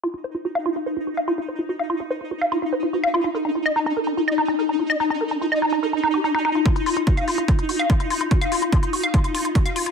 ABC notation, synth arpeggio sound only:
X:1
M:4/4
L:1/16
Q:1/4=145
K:Ebdor
V:1 name="Synth arpeggio sound"
F F c F G f F F c F G f F F c F | G f F F c F G f F F c F G f F F | B E F e E E B E F e E E B E F e | E E B E F e E E B E E =G E E E F |
F F F F G f F F F F G f F F F F | G f F F F F G f F F F F G f F F |]